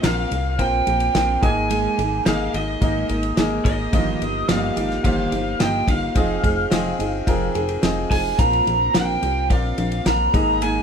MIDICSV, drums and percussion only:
0, 0, Header, 1, 2, 480
1, 0, Start_track
1, 0, Tempo, 557103
1, 1467, Time_signature, 4, 2, 24, 8
1, 9329, End_track
2, 0, Start_track
2, 0, Title_t, "Drums"
2, 29, Note_on_c, 9, 38, 121
2, 31, Note_on_c, 9, 51, 85
2, 115, Note_off_c, 9, 38, 0
2, 117, Note_off_c, 9, 51, 0
2, 271, Note_on_c, 9, 51, 64
2, 358, Note_off_c, 9, 51, 0
2, 508, Note_on_c, 9, 36, 85
2, 509, Note_on_c, 9, 51, 74
2, 594, Note_off_c, 9, 36, 0
2, 595, Note_off_c, 9, 51, 0
2, 749, Note_on_c, 9, 51, 58
2, 835, Note_off_c, 9, 51, 0
2, 863, Note_on_c, 9, 51, 53
2, 949, Note_off_c, 9, 51, 0
2, 989, Note_on_c, 9, 51, 73
2, 990, Note_on_c, 9, 38, 113
2, 1075, Note_off_c, 9, 51, 0
2, 1076, Note_off_c, 9, 38, 0
2, 1229, Note_on_c, 9, 36, 106
2, 1232, Note_on_c, 9, 51, 64
2, 1315, Note_off_c, 9, 36, 0
2, 1318, Note_off_c, 9, 51, 0
2, 1469, Note_on_c, 9, 51, 75
2, 1555, Note_off_c, 9, 51, 0
2, 1712, Note_on_c, 9, 51, 63
2, 1798, Note_off_c, 9, 51, 0
2, 1948, Note_on_c, 9, 38, 118
2, 1950, Note_on_c, 9, 51, 79
2, 2034, Note_off_c, 9, 38, 0
2, 2036, Note_off_c, 9, 51, 0
2, 2191, Note_on_c, 9, 51, 65
2, 2277, Note_off_c, 9, 51, 0
2, 2427, Note_on_c, 9, 36, 91
2, 2427, Note_on_c, 9, 51, 70
2, 2513, Note_off_c, 9, 36, 0
2, 2513, Note_off_c, 9, 51, 0
2, 2665, Note_on_c, 9, 51, 55
2, 2751, Note_off_c, 9, 51, 0
2, 2782, Note_on_c, 9, 51, 51
2, 2868, Note_off_c, 9, 51, 0
2, 2905, Note_on_c, 9, 51, 67
2, 2906, Note_on_c, 9, 38, 118
2, 2991, Note_off_c, 9, 51, 0
2, 2992, Note_off_c, 9, 38, 0
2, 3145, Note_on_c, 9, 36, 88
2, 3151, Note_on_c, 9, 51, 70
2, 3231, Note_off_c, 9, 36, 0
2, 3237, Note_off_c, 9, 51, 0
2, 3387, Note_on_c, 9, 36, 104
2, 3387, Note_on_c, 9, 51, 80
2, 3473, Note_off_c, 9, 36, 0
2, 3473, Note_off_c, 9, 51, 0
2, 3633, Note_on_c, 9, 51, 58
2, 3719, Note_off_c, 9, 51, 0
2, 3866, Note_on_c, 9, 38, 117
2, 3868, Note_on_c, 9, 51, 84
2, 3952, Note_off_c, 9, 38, 0
2, 3954, Note_off_c, 9, 51, 0
2, 4109, Note_on_c, 9, 51, 67
2, 4195, Note_off_c, 9, 51, 0
2, 4228, Note_on_c, 9, 38, 36
2, 4314, Note_off_c, 9, 38, 0
2, 4346, Note_on_c, 9, 36, 87
2, 4348, Note_on_c, 9, 51, 76
2, 4432, Note_off_c, 9, 36, 0
2, 4434, Note_off_c, 9, 51, 0
2, 4585, Note_on_c, 9, 51, 59
2, 4671, Note_off_c, 9, 51, 0
2, 4825, Note_on_c, 9, 51, 79
2, 4826, Note_on_c, 9, 38, 120
2, 4911, Note_off_c, 9, 51, 0
2, 4912, Note_off_c, 9, 38, 0
2, 5063, Note_on_c, 9, 36, 88
2, 5068, Note_on_c, 9, 51, 71
2, 5149, Note_off_c, 9, 36, 0
2, 5154, Note_off_c, 9, 51, 0
2, 5304, Note_on_c, 9, 36, 109
2, 5304, Note_on_c, 9, 51, 75
2, 5390, Note_off_c, 9, 36, 0
2, 5390, Note_off_c, 9, 51, 0
2, 5546, Note_on_c, 9, 36, 87
2, 5549, Note_on_c, 9, 51, 64
2, 5632, Note_off_c, 9, 36, 0
2, 5635, Note_off_c, 9, 51, 0
2, 5785, Note_on_c, 9, 38, 114
2, 5787, Note_on_c, 9, 51, 84
2, 5872, Note_off_c, 9, 38, 0
2, 5874, Note_off_c, 9, 51, 0
2, 6030, Note_on_c, 9, 51, 62
2, 6116, Note_off_c, 9, 51, 0
2, 6266, Note_on_c, 9, 36, 82
2, 6269, Note_on_c, 9, 51, 72
2, 6352, Note_off_c, 9, 36, 0
2, 6355, Note_off_c, 9, 51, 0
2, 6506, Note_on_c, 9, 51, 56
2, 6592, Note_off_c, 9, 51, 0
2, 6622, Note_on_c, 9, 51, 52
2, 6708, Note_off_c, 9, 51, 0
2, 6745, Note_on_c, 9, 51, 76
2, 6746, Note_on_c, 9, 38, 117
2, 6831, Note_off_c, 9, 51, 0
2, 6832, Note_off_c, 9, 38, 0
2, 6985, Note_on_c, 9, 36, 83
2, 6991, Note_on_c, 9, 46, 84
2, 6991, Note_on_c, 9, 51, 71
2, 7071, Note_off_c, 9, 36, 0
2, 7077, Note_off_c, 9, 46, 0
2, 7077, Note_off_c, 9, 51, 0
2, 7227, Note_on_c, 9, 36, 115
2, 7227, Note_on_c, 9, 44, 63
2, 7227, Note_on_c, 9, 51, 75
2, 7313, Note_off_c, 9, 36, 0
2, 7313, Note_off_c, 9, 44, 0
2, 7313, Note_off_c, 9, 51, 0
2, 7351, Note_on_c, 9, 51, 46
2, 7438, Note_off_c, 9, 51, 0
2, 7472, Note_on_c, 9, 51, 60
2, 7558, Note_off_c, 9, 51, 0
2, 7707, Note_on_c, 9, 38, 122
2, 7709, Note_on_c, 9, 51, 80
2, 7793, Note_off_c, 9, 38, 0
2, 7795, Note_off_c, 9, 51, 0
2, 7949, Note_on_c, 9, 51, 61
2, 8035, Note_off_c, 9, 51, 0
2, 8188, Note_on_c, 9, 36, 88
2, 8189, Note_on_c, 9, 51, 67
2, 8274, Note_off_c, 9, 36, 0
2, 8275, Note_off_c, 9, 51, 0
2, 8424, Note_on_c, 9, 51, 59
2, 8511, Note_off_c, 9, 51, 0
2, 8544, Note_on_c, 9, 51, 50
2, 8630, Note_off_c, 9, 51, 0
2, 8667, Note_on_c, 9, 38, 118
2, 8667, Note_on_c, 9, 51, 72
2, 8753, Note_off_c, 9, 51, 0
2, 8754, Note_off_c, 9, 38, 0
2, 8908, Note_on_c, 9, 36, 112
2, 8911, Note_on_c, 9, 51, 73
2, 8994, Note_off_c, 9, 36, 0
2, 8997, Note_off_c, 9, 51, 0
2, 9148, Note_on_c, 9, 51, 79
2, 9235, Note_off_c, 9, 51, 0
2, 9329, End_track
0, 0, End_of_file